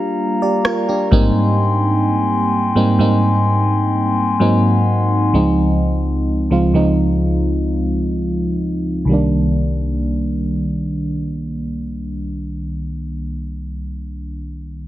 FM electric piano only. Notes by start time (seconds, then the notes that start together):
Already playing: G3 A#3 D4 F4
0.42 G4 D5
0.65 F4 A#4
0.89 D4 G4
1.11 G#2 G3 A#3 C4 D#4
2.75 G#2 G3 A#3 C4 D#4
2.99 G#2 G3 A#3 C4 D#4
4.39 G#2 F#3 A#3 C4 D#4
5.33 C#2 F3 G#3 C4 D#4
6.50 C#2 F3 G#3 C4 F4
6.74 C#2 F3 G#3 C4 D#4
9.05 C2 D#3
9.09 G3 A#3
9.13 D4